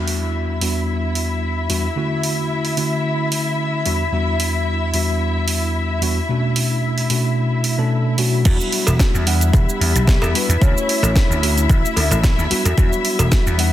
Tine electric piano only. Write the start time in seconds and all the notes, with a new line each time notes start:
Already playing: E2 G3 B3 D4 F#4
0.61 E2 G3 B3 D4 F#4
1.69 E2 G3 B3 D4 F#4
1.95 D3 A3 C#4 E4 F#4
2.76 D3 A3 C#4 E4 F#4
3.85 E2 G3 B3 D4 F#4
4.11 E2 G3 B3 D4 F#4
4.93 E2 G3 B3 D4 F#4
6.02 E2 G3 B3 D4 F#4
6.29 B2 A3 C#4 D4 F#4
7.09 B2 A3 C#4 D4 F#4
7.78 B2 A3 C#4 D4 A4
8.18 B2 A3 C#4 D4 F#4
8.45 G3 B3 D4 F#4
9.26 G3 B3 D4 F#5
10.34 G3 B3 D4 F#4
10.61 A3 C#4 E4 F#4
11.42 A3 C#4 E4 F#4
12.50 G3 B3 D4 F#4
12.77 G3 B3 D4 F#4
13.58 G3 B3 D4 F#5